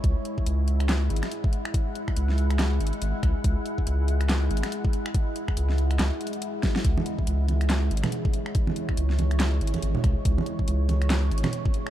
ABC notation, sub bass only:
X:1
M:4/4
L:1/8
Q:"Swing 16ths" 1/4=141
K:C#m
V:1 name="Sub bass" clef=bass
C,, z C,,3 G,,, z2 | z2 C,,3 G,,, G,,, C,, | C,, z C,,3 G,,, z2 | z2 C,,2 C,, z3 |
C,, z C,,3 G,,, z2 | z2 C,,3 G,,, G,,, C,, | C,, z C,,3 G,,, z2 |]